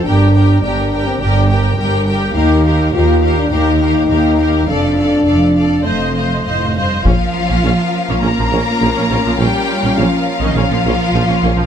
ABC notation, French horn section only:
X:1
M:4/4
L:1/16
Q:1/4=103
K:Gm
V:1 name="French horn section"
D4 D3 C D2 z6 | E4 F3 D E8 | D8 A,4 z4 | [K:Bbdor] [B,D]16- |
[B,D]16 |]